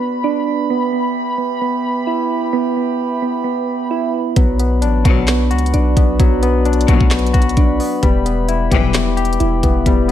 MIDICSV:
0, 0, Header, 1, 7, 480
1, 0, Start_track
1, 0, Tempo, 458015
1, 733, Time_signature, 4, 2, 24, 8
1, 10603, End_track
2, 0, Start_track
2, 0, Title_t, "Brass ensemble"
2, 0, Program_c, 0, 61
2, 0, Note_on_c, 0, 66, 83
2, 0, Note_on_c, 0, 71, 78
2, 0, Note_on_c, 0, 74, 76
2, 0, Note_on_c, 0, 83, 96
2, 695, Note_off_c, 0, 66, 0
2, 695, Note_off_c, 0, 74, 0
2, 733, Note_on_c, 0, 67, 85
2, 733, Note_on_c, 0, 76, 77
2, 4531, Note_off_c, 0, 83, 0
2, 4534, Note_off_c, 0, 67, 0
2, 4534, Note_off_c, 0, 76, 0
2, 4573, Note_on_c, 0, 66, 85
2, 4573, Note_on_c, 0, 74, 81
2, 4573, Note_on_c, 0, 83, 97
2, 8371, Note_off_c, 0, 71, 0
2, 8375, Note_off_c, 0, 66, 0
2, 8375, Note_off_c, 0, 74, 0
2, 8414, Note_on_c, 0, 71, 77
2, 8414, Note_on_c, 0, 76, 76
2, 8415, Note_on_c, 0, 67, 86
2, 10603, Note_off_c, 0, 67, 0
2, 10603, Note_off_c, 0, 71, 0
2, 10603, Note_off_c, 0, 76, 0
2, 10603, Note_off_c, 0, 83, 0
2, 10603, End_track
3, 0, Start_track
3, 0, Title_t, "Synth keys"
3, 0, Program_c, 1, 88
3, 0, Note_on_c, 1, 59, 96
3, 251, Note_on_c, 1, 62, 89
3, 723, Note_off_c, 1, 59, 0
3, 732, Note_off_c, 1, 62, 0
3, 736, Note_on_c, 1, 59, 94
3, 961, Note_off_c, 1, 59, 0
3, 974, Note_on_c, 1, 59, 80
3, 1432, Note_off_c, 1, 59, 0
3, 1445, Note_on_c, 1, 59, 75
3, 1679, Note_off_c, 1, 59, 0
3, 1691, Note_on_c, 1, 59, 87
3, 2170, Note_on_c, 1, 64, 87
3, 2638, Note_off_c, 1, 59, 0
3, 2650, Note_on_c, 1, 59, 100
3, 2885, Note_off_c, 1, 59, 0
3, 2898, Note_on_c, 1, 59, 79
3, 3363, Note_off_c, 1, 59, 0
3, 3376, Note_on_c, 1, 59, 82
3, 3594, Note_off_c, 1, 59, 0
3, 3606, Note_on_c, 1, 59, 87
3, 3611, Note_off_c, 1, 64, 0
3, 4094, Note_on_c, 1, 64, 95
3, 4559, Note_off_c, 1, 59, 0
3, 4572, Note_on_c, 1, 59, 108
3, 4573, Note_off_c, 1, 64, 0
3, 4804, Note_off_c, 1, 59, 0
3, 4817, Note_on_c, 1, 59, 75
3, 5281, Note_off_c, 1, 59, 0
3, 5293, Note_on_c, 1, 59, 88
3, 5524, Note_off_c, 1, 59, 0
3, 5536, Note_on_c, 1, 59, 97
3, 6010, Note_on_c, 1, 62, 95
3, 6482, Note_off_c, 1, 59, 0
3, 6494, Note_on_c, 1, 59, 101
3, 6722, Note_off_c, 1, 59, 0
3, 6735, Note_on_c, 1, 59, 73
3, 7206, Note_off_c, 1, 59, 0
3, 7219, Note_on_c, 1, 59, 86
3, 7439, Note_off_c, 1, 59, 0
3, 7451, Note_off_c, 1, 62, 0
3, 7451, Note_on_c, 1, 59, 89
3, 7932, Note_on_c, 1, 62, 90
3, 8403, Note_off_c, 1, 59, 0
3, 8412, Note_off_c, 1, 62, 0
3, 8416, Note_on_c, 1, 59, 98
3, 8642, Note_off_c, 1, 59, 0
3, 8655, Note_on_c, 1, 59, 80
3, 9113, Note_off_c, 1, 59, 0
3, 9125, Note_on_c, 1, 59, 78
3, 9359, Note_off_c, 1, 59, 0
3, 9371, Note_on_c, 1, 59, 88
3, 9850, Note_on_c, 1, 64, 89
3, 10318, Note_off_c, 1, 59, 0
3, 10330, Note_on_c, 1, 59, 101
3, 10565, Note_off_c, 1, 59, 0
3, 10603, Note_off_c, 1, 64, 0
3, 10603, End_track
4, 0, Start_track
4, 0, Title_t, "Tine electric piano"
4, 0, Program_c, 2, 4
4, 0, Control_c, 2, 64, 127
4, 748, Control_c, 2, 64, 0
4, 4577, Note_on_c, 2, 54, 94
4, 4776, Control_c, 2, 64, 127
4, 4816, Note_on_c, 2, 59, 78
4, 5049, Note_on_c, 2, 62, 91
4, 5293, Note_on_c, 2, 66, 88
4, 5756, Note_off_c, 2, 66, 0
4, 5769, Note_on_c, 2, 66, 81
4, 5775, Note_off_c, 2, 54, 0
4, 6014, Note_off_c, 2, 59, 0
4, 6251, Note_off_c, 2, 62, 0
4, 6254, Note_on_c, 2, 59, 74
4, 6492, Note_on_c, 2, 54, 103
4, 6722, Note_off_c, 2, 59, 0
4, 6735, Note_on_c, 2, 59, 93
4, 6971, Note_off_c, 2, 66, 0
4, 6973, Note_on_c, 2, 62, 92
4, 7214, Note_on_c, 2, 66, 97
4, 7675, Note_off_c, 2, 66, 0
4, 7687, Note_on_c, 2, 66, 87
4, 7692, Note_off_c, 2, 54, 0
4, 7934, Note_off_c, 2, 59, 0
4, 8173, Note_off_c, 2, 62, 0
4, 8174, Note_on_c, 2, 59, 78
4, 8410, Note_off_c, 2, 66, 0
4, 8411, Note_on_c, 2, 55, 101
4, 8413, Note_off_c, 2, 59, 0
4, 8426, Control_c, 2, 64, 0
4, 8620, Control_c, 2, 64, 127
4, 8654, Note_on_c, 2, 59, 85
4, 8892, Note_on_c, 2, 64, 93
4, 9142, Note_on_c, 2, 67, 93
4, 9594, Note_off_c, 2, 67, 0
4, 9606, Note_on_c, 2, 67, 85
4, 9612, Note_off_c, 2, 55, 0
4, 9853, Note_off_c, 2, 59, 0
4, 10092, Note_off_c, 2, 64, 0
4, 10096, Note_on_c, 2, 59, 77
4, 10342, Note_on_c, 2, 55, 96
4, 10556, Note_off_c, 2, 59, 0
4, 10569, Note_on_c, 2, 59, 80
4, 10603, Note_off_c, 2, 55, 0
4, 10603, Note_off_c, 2, 59, 0
4, 10603, Note_off_c, 2, 67, 0
4, 10603, End_track
5, 0, Start_track
5, 0, Title_t, "String section"
5, 0, Program_c, 3, 48
5, 5293, Note_on_c, 3, 47, 101
5, 5294, Note_on_c, 3, 38, 96
5, 5294, Note_on_c, 3, 54, 105
5, 5642, Note_off_c, 3, 38, 0
5, 5642, Note_off_c, 3, 47, 0
5, 5642, Note_off_c, 3, 54, 0
5, 7213, Note_on_c, 3, 38, 101
5, 7213, Note_on_c, 3, 47, 104
5, 7213, Note_on_c, 3, 54, 97
5, 7562, Note_off_c, 3, 38, 0
5, 7562, Note_off_c, 3, 47, 0
5, 7562, Note_off_c, 3, 54, 0
5, 9132, Note_on_c, 3, 43, 97
5, 9132, Note_on_c, 3, 52, 119
5, 9133, Note_on_c, 3, 35, 109
5, 9481, Note_off_c, 3, 43, 0
5, 9481, Note_off_c, 3, 52, 0
5, 9482, Note_off_c, 3, 35, 0
5, 10603, End_track
6, 0, Start_track
6, 0, Title_t, "808-style bass"
6, 0, Program_c, 4, 38
6, 4573, Note_on_c, 4, 35, 105
6, 5053, Note_on_c, 4, 33, 104
6, 5069, Note_off_c, 4, 35, 0
6, 5281, Note_off_c, 4, 33, 0
6, 5293, Note_on_c, 4, 35, 109
6, 5773, Note_on_c, 4, 37, 99
6, 5789, Note_off_c, 4, 35, 0
6, 6001, Note_off_c, 4, 37, 0
6, 6013, Note_on_c, 4, 35, 108
6, 6244, Note_off_c, 4, 35, 0
6, 6253, Note_on_c, 4, 35, 104
6, 6484, Note_off_c, 4, 35, 0
6, 6493, Note_on_c, 4, 35, 113
6, 7184, Note_off_c, 4, 35, 0
6, 7213, Note_on_c, 4, 35, 108
6, 7335, Note_off_c, 4, 35, 0
6, 7341, Note_on_c, 4, 35, 100
6, 7679, Note_off_c, 4, 35, 0
6, 7694, Note_on_c, 4, 35, 104
6, 7924, Note_off_c, 4, 35, 0
6, 7933, Note_on_c, 4, 35, 111
6, 8163, Note_off_c, 4, 35, 0
6, 8413, Note_on_c, 4, 28, 111
6, 9104, Note_off_c, 4, 28, 0
6, 9133, Note_on_c, 4, 28, 109
6, 9824, Note_off_c, 4, 28, 0
6, 9853, Note_on_c, 4, 28, 111
6, 10083, Note_off_c, 4, 28, 0
6, 10094, Note_on_c, 4, 28, 108
6, 10324, Note_off_c, 4, 28, 0
6, 10334, Note_on_c, 4, 28, 111
6, 10603, Note_off_c, 4, 28, 0
6, 10603, End_track
7, 0, Start_track
7, 0, Title_t, "Drums"
7, 4573, Note_on_c, 9, 36, 114
7, 4573, Note_on_c, 9, 42, 76
7, 4678, Note_off_c, 9, 36, 0
7, 4678, Note_off_c, 9, 42, 0
7, 4815, Note_on_c, 9, 42, 75
7, 4920, Note_off_c, 9, 42, 0
7, 5052, Note_on_c, 9, 42, 80
7, 5156, Note_off_c, 9, 42, 0
7, 5293, Note_on_c, 9, 36, 101
7, 5294, Note_on_c, 9, 42, 62
7, 5398, Note_off_c, 9, 36, 0
7, 5399, Note_off_c, 9, 42, 0
7, 5529, Note_on_c, 9, 39, 95
7, 5533, Note_on_c, 9, 42, 74
7, 5534, Note_on_c, 9, 38, 116
7, 5634, Note_off_c, 9, 39, 0
7, 5638, Note_off_c, 9, 38, 0
7, 5638, Note_off_c, 9, 42, 0
7, 5772, Note_on_c, 9, 42, 59
7, 5853, Note_off_c, 9, 42, 0
7, 5853, Note_on_c, 9, 42, 62
7, 5933, Note_off_c, 9, 42, 0
7, 5933, Note_on_c, 9, 42, 64
7, 6012, Note_off_c, 9, 42, 0
7, 6012, Note_on_c, 9, 42, 72
7, 6117, Note_off_c, 9, 42, 0
7, 6253, Note_on_c, 9, 36, 89
7, 6254, Note_on_c, 9, 42, 79
7, 6358, Note_off_c, 9, 36, 0
7, 6359, Note_off_c, 9, 42, 0
7, 6493, Note_on_c, 9, 36, 113
7, 6493, Note_on_c, 9, 42, 75
7, 6598, Note_off_c, 9, 36, 0
7, 6598, Note_off_c, 9, 42, 0
7, 6735, Note_on_c, 9, 42, 77
7, 6840, Note_off_c, 9, 42, 0
7, 6973, Note_on_c, 9, 42, 48
7, 7053, Note_off_c, 9, 42, 0
7, 7053, Note_on_c, 9, 42, 62
7, 7133, Note_off_c, 9, 42, 0
7, 7133, Note_on_c, 9, 42, 79
7, 7213, Note_on_c, 9, 36, 105
7, 7214, Note_off_c, 9, 42, 0
7, 7214, Note_on_c, 9, 42, 66
7, 7318, Note_off_c, 9, 36, 0
7, 7319, Note_off_c, 9, 42, 0
7, 7341, Note_on_c, 9, 36, 102
7, 7446, Note_off_c, 9, 36, 0
7, 7449, Note_on_c, 9, 39, 95
7, 7453, Note_on_c, 9, 38, 119
7, 7453, Note_on_c, 9, 42, 62
7, 7533, Note_off_c, 9, 42, 0
7, 7533, Note_on_c, 9, 42, 63
7, 7553, Note_off_c, 9, 39, 0
7, 7558, Note_off_c, 9, 38, 0
7, 7613, Note_off_c, 9, 42, 0
7, 7613, Note_on_c, 9, 42, 63
7, 7693, Note_off_c, 9, 42, 0
7, 7693, Note_on_c, 9, 42, 62
7, 7694, Note_on_c, 9, 36, 93
7, 7773, Note_off_c, 9, 42, 0
7, 7773, Note_on_c, 9, 42, 62
7, 7799, Note_off_c, 9, 36, 0
7, 7853, Note_off_c, 9, 42, 0
7, 7853, Note_on_c, 9, 42, 65
7, 7932, Note_off_c, 9, 42, 0
7, 7932, Note_on_c, 9, 42, 72
7, 7933, Note_on_c, 9, 36, 97
7, 8036, Note_off_c, 9, 42, 0
7, 8038, Note_off_c, 9, 36, 0
7, 8174, Note_on_c, 9, 46, 76
7, 8278, Note_off_c, 9, 46, 0
7, 8413, Note_on_c, 9, 36, 114
7, 8413, Note_on_c, 9, 42, 73
7, 8518, Note_off_c, 9, 36, 0
7, 8518, Note_off_c, 9, 42, 0
7, 8656, Note_on_c, 9, 42, 80
7, 8761, Note_off_c, 9, 42, 0
7, 8893, Note_on_c, 9, 42, 80
7, 8998, Note_off_c, 9, 42, 0
7, 9133, Note_on_c, 9, 36, 104
7, 9135, Note_on_c, 9, 42, 62
7, 9238, Note_off_c, 9, 36, 0
7, 9240, Note_off_c, 9, 42, 0
7, 9370, Note_on_c, 9, 39, 96
7, 9374, Note_on_c, 9, 38, 118
7, 9374, Note_on_c, 9, 42, 75
7, 9474, Note_off_c, 9, 39, 0
7, 9479, Note_off_c, 9, 38, 0
7, 9479, Note_off_c, 9, 42, 0
7, 9613, Note_on_c, 9, 42, 60
7, 9694, Note_off_c, 9, 42, 0
7, 9694, Note_on_c, 9, 42, 62
7, 9774, Note_off_c, 9, 42, 0
7, 9774, Note_on_c, 9, 42, 66
7, 9853, Note_off_c, 9, 42, 0
7, 9853, Note_on_c, 9, 42, 71
7, 9958, Note_off_c, 9, 42, 0
7, 10094, Note_on_c, 9, 36, 89
7, 10095, Note_on_c, 9, 42, 76
7, 10199, Note_off_c, 9, 36, 0
7, 10200, Note_off_c, 9, 42, 0
7, 10334, Note_on_c, 9, 36, 112
7, 10334, Note_on_c, 9, 42, 74
7, 10438, Note_off_c, 9, 36, 0
7, 10439, Note_off_c, 9, 42, 0
7, 10603, End_track
0, 0, End_of_file